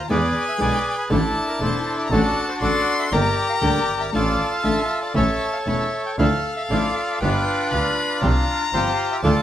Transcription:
Already playing: A#5
0.09 E2 B2 D3 G#3 B3 E4 G#4 B4 D5 G#5
0.49 E5
0.58 B1 B2 D3 G#3 B3 E4 B4 D5
0.62 G#4
0.98 B4
1.10 A1 D3 A3 D4 E4 A4 A5
1.48 A#4
1.60 E1 D3 A3 D4 E4 A4 C5
1.98 D5
2.05 A#5
2.10 A1 D3 A3 D4 F#4 A4 A5
2.48 C5
2.61 A1 D3 A3 D4 F#4 A4 D5 C6
2.99 E5
3.11 G1 D3 G3 A#3 D4 G4 A#4 D5 A#5
3.49 F5
3.61 D2 D3 G3 A#3 D4 G4 A#4 D5 G5
3.88 G1
4.00 E5
4.12 A1 D3 A3 D4 F4 A4 D5 A5
4.52 F5
4.64 A1 D3 A3 D4 F4 A4 E5
5.02 D5
5.14 A1 E3 A3 C#4 E4 A4 C#5 E5 A5
5.53 F5
5.66 E1 E3 A3 C#4 E4 A4 C#5 E5
6.06 G5
6.18 D2 D3 F3 A3 D4 E4 A4 F5
6.57 E5
6.69 A1 D3 F3 A3 D4 E4 F4 A4 D5
7.21 G1 G3 B3 D4 F4 B4 G5
7.71 D2 G3 B3 F4 B5
8.21 C2 C3 F3 G3 C4 F4 G4 A#5
8.73 G1 C3 F3 G3 C4 F4 G4 C5
9.11 E5
9.23 D2 D3 A3 D4 F4 A4 D5 A5

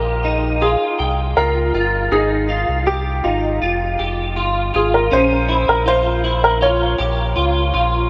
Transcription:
Already playing: A#1 G4 A#4
0.24 D#4
0.61 F4 G#4
0.99 C2 G5
1.37 C#2 F4 A#4
1.74 G1 F4
2.12 G#1 D#4 G#4
2.49 F4
2.69 C2
2.86 G4
3.24 G#1 D#4 F4
3.62 F1 F4
3.99 F1 G4
4.36 G1 F4
4.74 G#1 F4 G#4
4.94 A#4
5.11 A#1 C#4 C5
5.49 E4
5.68 A#1 A#4
5.86 F4 C5
6.24 E4
6.44 A#4
6.61 F4 C#5
6.98 A#1 G4
7.36 C#2 F4
7.74 A#1 F4

